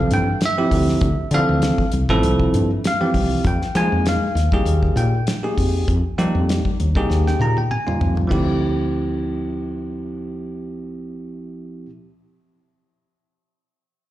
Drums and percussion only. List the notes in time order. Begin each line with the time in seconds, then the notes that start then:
0.11 closed hi-hat
0.41 snare, closed hi-hat
0.71 kick, open hi-hat
0.88 snare
1.01 kick, closed hi-hat
1.31 closed hi-hat
1.62 snare, closed hi-hat
1.78 kick
1.92 closed hi-hat
2.09 kick
2.23 closed hi-hat
2.39 kick
2.54 closed hi-hat
2.84 snare, closed hi-hat
3.14 kick, open hi-hat
3.44 kick, closed hi-hat
3.62 snare
3.75 closed hi-hat
4.06 snare, closed hi-hat
4.37 snare, closed hi-hat
4.52 kick
4.66 closed hi-hat
4.83 kick
4.97 closed hi-hat
5.27 snare, closed hi-hat
5.58 kick, open hi-hat
5.88 kick, closed hi-hat
6.19 closed hi-hat
6.49 snare, closed hi-hat
6.65 kick
6.80 closed hi-hat
6.95 kick
7.10 snare
7.27 snare
7.41 high tom
7.57 high tom
7.71 mid tom
7.88 mid tom
8.01 floor tom
8.17 floor tom
8.31 kick, crash